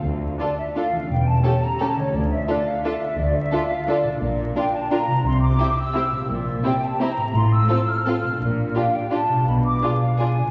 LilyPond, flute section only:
\new Staff \with { instrumentName = "Flute section" } { \time 3/4 \key d \minor \tempo 4 = 170 r4 d''8 e''8 f''4 | g''8 a''4 bes''8 a''8 cis''8 | d''8 e''8 d''8 f''8 e''4 | d''8 e''4 f''8 d''4 |
r4 g''8 a''8 bes''4 | c'''8 d'''4 e'''4. | r4 g''8 a''8 bes''4 | c'''8 e'''4 f'''4. |
r4 f''8 g''8 a''4 | b''8 d'''4 f''8 gis''4 | }